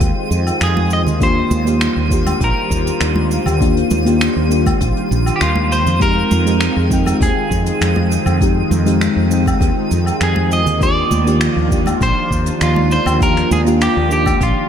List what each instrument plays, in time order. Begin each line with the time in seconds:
Already playing: analog synth pad D#3 G#3 F4 C5, fm electric piano G#3 C4 D#4 G4 G5, synth texture D#7
0.00 fretless electric bass D#2, kick, closed hi-hat, cabasa
0.31 fretless electric bass F2, cabasa
0.46 closed hi-hat, cabasa, low woodblock
0.61 fretless electric bass F2, clean electric guitar G#4, finger snap, closed hi-hat, cabasa
0.77 high conga
0.90 clean electric guitar D#5, cabasa
1.06 fretless electric bass D#2, closed hi-hat, low conga, cabasa
1.20 analog synth pad D#3 G3, fm electric piano A#3 D4 F4 G4, clean electric guitar C5, kick, closed hi-hat, cabasa
1.51 fretless electric bass D#2, high conga, cabasa
1.65 fm electric piano A#3 D4 F4 G4, closed hi-hat, cabasa
1.81 finger snap, closed hi-hat, cabasa
1.97 fretless electric bass D#2
2.08 fm electric piano A#3 D4 F4, kick, cabasa
2.13 fm electric piano G4
2.26 closed hi-hat, high conga, cabasa, low woodblock
2.41 fretless electric bass A#1, clean electric guitar A#4, kick, closed hi-hat, cabasa
2.71 fretless electric bass D#2, kick, cabasa
2.87 closed hi-hat, cabasa
3.01 fretless electric bass D#2, finger snap, closed hi-hat, cabasa
3.16 high conga
3.31 cabasa
3.46 fretless electric bass D#2, closed hi-hat, low conga, cabasa, low woodblock
3.60 fm electric piano A#3 D4 F4 G4, kick, closed hi-hat, cabasa
3.77 closed hi-hat
3.90 fretless electric bass D#2, high conga, cabasa
4.05 fm electric piano A#3 D4 F4 G4, closed hi-hat, cabasa
4.21 finger snap, closed hi-hat, cabasa
4.36 fretless electric bass D#2
4.49 fm electric piano A#3 D4 F4, cabasa
4.53 fm electric piano G4
4.66 kick, closed hi-hat, high conga, cabasa, low woodblock
4.81 fretless electric bass A#1, kick, closed hi-hat, cabasa
4.97 closed hi-hat
5.11 fretless electric bass A#1, cabasa
5.26 closed hi-hat, cabasa, low woodblock
5.36 clean electric guitar G4
5.41 fretless electric bass D#2, clean electric guitar F4, finger snap, closed hi-hat, cabasa
5.56 high conga
5.72 clean electric guitar C5, cabasa
5.87 fretless electric bass F2, closed hi-hat, low conga, cabasa
6.00 fm electric piano G#3 C4 D#4 G4, analog synth pad G#3 C4, clean electric guitar A#4, kick, closed hi-hat, cabasa
6.31 fretless electric bass F2, high conga, cabasa
6.45 fm electric piano G#3 C4 D#4 G4, closed hi-hat, cabasa
6.61 finger snap, closed hi-hat, cabasa
6.77 fretless electric bass F2
6.88 fm electric piano G#3 C4 D#4, kick, cabasa
6.93 fm electric piano G5
7.06 closed hi-hat, high conga, cabasa, low woodblock
7.21 fretless electric bass D#2, clean electric guitar G#4, kick, closed hi-hat, cabasa
7.51 fretless electric bass F2, kick, cabasa
7.66 closed hi-hat, cabasa
7.81 fretless electric bass F2, finger snap, closed hi-hat, cabasa
7.96 high conga
8.12 cabasa
8.26 fretless electric bass F2, closed hi-hat, low conga, cabasa, low woodblock
8.40 fm electric piano G#3 C4 D#4 G4, kick, closed hi-hat, cabasa
8.71 fretless electric bass F2, high conga, cabasa
8.85 fm electric piano G#3 C4 D#4 G4, closed hi-hat, cabasa
9.01 finger snap, closed hi-hat, cabasa
9.16 fretless electric bass F2
9.28 fm electric piano G#3 C4 D#4, cabasa
9.33 fm electric piano G5
9.46 kick, closed hi-hat, high conga, cabasa, low woodblock
9.61 fretless electric bass D#2, kick, closed hi-hat, cabasa
9.91 fretless electric bass F2, cabasa
10.06 closed hi-hat, cabasa, low woodblock
10.21 fretless electric bass F2, clean electric guitar G#4, finger snap, closed hi-hat, cabasa
10.36 high conga
10.51 clean electric guitar D#5, cabasa
10.66 fretless electric bass D#2, closed hi-hat, low conga, cabasa
10.80 analog synth pad F3 D4 F4, fm electric piano A#3 D4 F4 G4, clean electric guitar D5, kick, closed hi-hat, cabasa
11.11 fretless electric bass D#2, high conga, cabasa
11.25 fm electric piano A#3 D4 F4 G4, closed hi-hat, cabasa
11.41 finger snap, closed hi-hat, cabasa
11.57 fretless electric bass D#2
11.69 fm electric piano A#3 D4 F4, kick, cabasa
11.74 fm electric piano G4
11.86 closed hi-hat, high conga, cabasa, low woodblock
12.01 fretless electric bass A#1, clean electric guitar C5, kick, closed hi-hat, cabasa
12.31 fretless electric bass D#2, kick, cabasa
12.46 closed hi-hat, cabasa
12.60 fretless electric bass D#2, clean electric guitar F4, finger snap, closed hi-hat, cabasa
12.76 high conga
12.91 clean electric guitar C5, cabasa
13.06 fretless electric bass D#2, closed hi-hat, low conga, cabasa, low woodblock
13.20 fm electric piano A#3 D4 F4 G4, clean electric guitar A#4, kick, closed hi-hat, cabasa
13.37 finger snap, closed hi-hat
13.51 fretless electric bass D#2, clean electric guitar G#4, high conga, cabasa
13.65 fm electric piano A#3 D4 F4 G4, closed hi-hat, cabasa
13.81 clean electric guitar G4, finger snap, closed hi-hat, cabasa
13.97 fretless electric bass D#2
14.09 fm electric piano A#3 D4 F4, clean electric guitar G4, cabasa
14.13 fm electric piano G4
14.26 kick, closed hi-hat, high conga, cabasa, low woodblock
14.41 fretless electric bass A#1, clean electric guitar F4, kick, closed hi-hat, cabasa